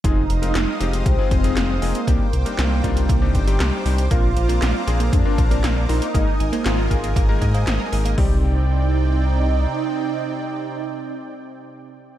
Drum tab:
HH |x-xxx-xxx-xxx-ox|x-xxx-xxx-xxx-ox|x-xxx-xxx-xxx-ox|x-xxx-xxx-xxx-ox|
CP |----x-------x---|----x-------x---|----x-------x---|----x-------x---|
SD |----o-------o---|----o-------o---|----o-------o---|----o-------o---|
BD |o-------o-o-----|o-----o-o-o-----|o-------o-o-----|o-----o-o-o-----|

HH |o---------------|----------------|
CP |----------------|----------------|
SD |----------------|----------------|
BD |o---------------|----------------|